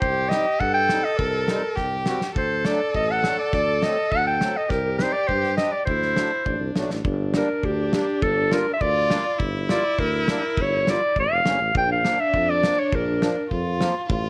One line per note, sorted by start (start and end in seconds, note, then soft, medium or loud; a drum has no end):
0.00 0.37 C2 medium
0.00 0.60 G4 loud
0.00 0.30 C5 medium
0.00 kick medium
0.29 0.45 G3 medium
0.29 0.46 C4 medium
0.29 0.46 D#4 medium
0.29 0.62 D#5 medium
0.29 snare medium
0.59 0.95 G2 medium
0.59 1.77 A4 loud
0.59 0.73 F#5 medium
0.59 kick medium
0.74 1.06 G5 loud
0.89 1.04 G3 medium
0.89 1.04 C4 medium
0.89 1.04 D#4 medium
0.89 snare medium
1.04 1.19 D#5 medium
1.17 1.54 C2 medium
1.17 2.06 A#4 medium
1.17 kick medium
1.48 1.63 G3 medium
1.48 1.63 C4 medium
1.48 1.63 D#4 medium
1.48 snare medium
1.76 2.12 C2 medium
1.76 2.34 G4 medium
1.76 kick medium
1.76 snare soft
2.06 2.21 G3 medium
2.06 2.21 C4 medium
2.06 2.21 F#4 medium
2.06 snare medium
2.21 snare medium
2.35 2.71 D2 medium
2.35 4.66 A4 medium
2.35 2.67 C5 medium
2.35 kick medium
2.65 2.80 F#3 medium
2.65 2.80 A3 medium
2.65 2.81 D4 medium
2.65 2.94 D5 medium
2.65 snare medium
2.94 3.29 A1 medium
2.94 3.13 D#5 medium
2.94 kick medium
3.11 3.38 F#5 medium
3.24 3.38 F#3 medium
3.24 3.39 A3 soft
3.24 3.39 D4 medium
3.24 snare medium
3.39 3.52 D5 medium
3.53 3.88 D2 medium
3.53 3.84 D5 loud
3.53 kick medium
3.53 snare soft
3.82 3.97 F#3 medium
3.82 3.97 A3 medium
3.82 3.98 C4 medium
3.82 4.13 D#5 medium
3.82 snare medium
4.12 4.47 D2 medium
4.12 4.26 F#5 loud
4.12 kick medium
4.27 4.58 G5 medium
4.41 4.56 F#3 medium
4.41 4.56 A3 medium
4.41 4.56 C4 medium
4.41 snare medium
4.57 4.71 D#5 medium
4.69 5.05 C2 loud
4.69 5.83 G4 medium
4.69 4.97 A#4 medium
4.69 kick medium
4.69 snare soft
4.98 5.14 G3 medium
4.98 5.14 C4 medium
4.98 5.15 D#4 medium
4.98 5.14 C5 medium
4.98 snare medium
5.13 5.29 D5 loud
5.27 5.64 G2 medium
5.27 5.56 C5 medium
5.27 kick soft
5.43 snare soft
5.57 5.73 G3 medium
5.57 5.73 C4 medium
5.57 5.73 D4 medium
5.57 5.73 D#5 medium
5.57 snare medium
5.71 5.85 D5 medium
5.85 6.22 D2 medium
5.85 6.47 E4 medium
5.85 6.70 C5 medium
5.85 kick medium
6.02 snare soft
6.16 6.31 F#3 medium
6.16 6.31 A3 medium
6.16 6.32 D4 medium
6.16 snare medium
6.45 6.55 A1 medium
6.45 7.03 D4 medium
6.45 kick medium
6.59 6.73 C2 medium
6.75 6.88 B1 medium
6.75 6.90 F#3 medium
6.75 6.90 A3 medium
6.75 6.91 D4 medium
6.75 snare medium
6.88 7.02 A1 medium
6.88 snare medium
7.03 7.40 G1 loud
7.03 8.76 D4 medium
7.03 kick medium
7.33 7.49 G3 medium
7.33 7.49 A#3 medium
7.33 7.49 D4 medium
7.33 7.66 A#4 medium
7.33 snare medium
7.63 7.99 D2 medium
7.63 7.93 G4 medium
7.63 kick medium
7.92 8.07 G3 medium
7.92 8.07 A#3 medium
7.92 8.07 D4 medium
7.92 8.24 G4 medium
7.92 snare loud
8.22 8.57 G1 loud
8.22 8.54 A4 loud
8.22 kick medium
8.51 8.66 G3 medium
8.51 8.66 A#3 medium
8.51 8.66 F4 medium
8.51 8.73 A#4 medium
8.51 snare medium
8.73 8.83 E5 medium
8.80 9.16 D2 medium
8.80 9.40 F4 loud
8.80 9.40 D5 loud
8.80 kick medium
9.10 9.25 G3 medium
9.10 9.25 A#3 medium
9.10 9.25 D4 medium
9.10 snare medium
9.38 9.75 G1 medium
9.38 11.44 E4 loud
9.38 kick medium
9.69 9.84 G3 medium
9.69 9.84 A#3 medium
9.69 9.84 F4 medium
9.69 10.01 D5 medium
9.69 snare medium
9.99 10.34 D2 medium
9.99 10.28 A#4 medium
9.99 kick medium
10.28 10.43 G3 medium
10.28 10.43 A#3 medium
10.28 10.43 D4 medium
10.28 10.63 A#4 medium
10.28 snare loud
10.57 10.93 G1 loud
10.57 10.92 C#5 medium
10.57 kick medium
10.86 11.01 G3 medium
10.86 11.01 A#3 medium
10.86 11.01 F4 medium
10.86 snare medium
10.91 11.18 D5 medium
11.16 11.25 A1 medium
11.16 11.73 F5 loud
11.16 kick medium
11.30 11.44 F1 medium
11.45 11.58 G1 medium
11.45 11.60 G3 medium
11.45 11.60 A#3 medium
11.45 11.60 C#4 medium
11.45 snare loud
11.60 11.73 A1 medium
11.74 12.10 A#1 medium
11.74 13.47 D4 medium
11.74 11.90 G5 loud
11.74 kick medium
11.92 12.22 F5 medium
12.02 12.18 F3 medium
12.02 12.18 A#3 medium
12.02 12.18 D4 medium
12.02 snare medium
12.20 12.51 E5 loud
12.34 12.69 F2 medium
12.34 kick medium
12.50 12.81 D5 medium
12.63 12.78 F3 medium
12.63 12.78 A#3 medium
12.63 12.78 D4 medium
12.63 snare loud
12.79 12.97 C#5 medium
12.92 13.28 A#1 loud
12.92 13.52 A#4 medium
12.92 kick medium
13.21 13.36 F3 medium
13.21 13.36 A#3 medium
13.21 13.36 D4 medium
13.21 snare medium
13.50 13.86 F2 medium
13.50 14.05 F4 medium
13.50 kick medium
13.79 13.94 F3 medium
13.79 13.95 A#3 medium
13.79 13.95 F4 medium
13.79 snare medium
14.09 14.29 A1 loud
14.09 14.29 F4 loud
14.09 kick loud